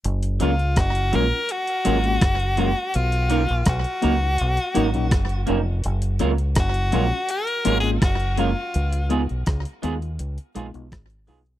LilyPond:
<<
  \new Staff \with { instrumentName = "Tenor saxophone" } { \time 4/4 \key fis \major \tempo 4 = 83 r8 eis'8 fis'8 ais'8 fis'2 | eis'4 fis'2~ fis'8 r8 | r4 fis'4 \tuplet 3/2 { ais'4 gis'8 } fis'8 eis'8~ | eis'8 r2. r8 | }
  \new Staff \with { instrumentName = "Clean electric guitar" } { \time 4/4 \key fis \major r8 <fis cis' eis' ais'>8 r8 <fis cis' eis' ais'>8 r8 <fis cis' eis' ais'>8 r8 <fis cis' eis' ais'>8 | r8 <ais dis' fis' ais'>8 r8 <ais dis' fis' ais'>8 r8 <ais dis' fis' ais'>8 r8 <ais dis' fis' ais'>8 | r8 <fis cis' eis' ais'>8 r8 <fis cis' eis' ais'>8 r8 <fis cis' eis' ais'>8 r8 <fis cis' eis' ais'>8 | r8 <gis b eis' gis'>8 r8 <gis b eis' gis'>8 r8 <gis b eis' gis'>8 r8 <gis b eis' gis'>8 | }
  \new Staff \with { instrumentName = "Tine electric piano" } { \time 4/4 \key fis \major r8 <gis ais cis' eis'>16 r8. <gis ais cis' eis'>16 r8. <gis ais cis' eis'>16 <gis ais cis' eis'>16 r8 <gis ais cis' eis'>16 r16 | r8 <fis ais cis' dis'>16 r8. <fis ais cis' dis'>16 r8. <fis ais cis' dis'>16 <fis ais cis' dis'>16 r8 <fis ais cis' dis'>16 r16 | r8 <gis ais cis' eis'>16 r8. <gis ais cis' eis'>16 r8. <gis ais cis' eis'>16 <gis ais cis' eis'>16 r8 <gis ais cis' eis'>16 r16 | r8 <gis b dis' eis'>16 r8. <gis b dis' eis'>16 r8. <gis b dis' eis'>16 <gis b dis' eis'>16 r8 <gis b dis' eis'>16 r16 | }
  \new Staff \with { instrumentName = "Fingered electric bass" } { \clef bass \time 4/4 \key fis \major fis,,8 cis,8 fis,,8 ais,,16 r8. gis,,8 fis,,8. r16 | b,,8. ais,,16 b,,16 r16 cis,8 b,,16 r16 gis,,16 ais,,16 fis,,8 eis,,8 | fis,,8 cis,8 fis,,8 ais,,16 r8. gis,,8 fis,,8. r16 | cis,8. b,,16 cis,16 r16 dis,8 cis,16 r16 ais,,16 b,,16 gis,,8 b,,8 | }
  \new DrumStaff \with { instrumentName = "Drums" } \drummode { \time 4/4 hh16 hh16 hh16 hh16 <hh bd ss>16 hh16 hh8 hh16 hh16 hh16 hh16 <hh bd ss>16 hh16 hh8 | hh16 hh16 hh16 hh16 <hh bd ss>16 hh16 hh8 hh16 hh16 hh16 hh16 <hh bd ss>16 hh16 hh8 | hh16 hh16 hh16 hh16 <hh bd ss>16 hh16 hh8 hh16 hh16 hh16 hh16 <hh bd ss>16 hh16 hh8 | hh16 hh16 hh16 hh16 <hh bd ss>16 hh16 hh16 hh16 hh16 hh16 hh16 hh16 <hh bd ss>16 hh16 hho16 hh16 | }
>>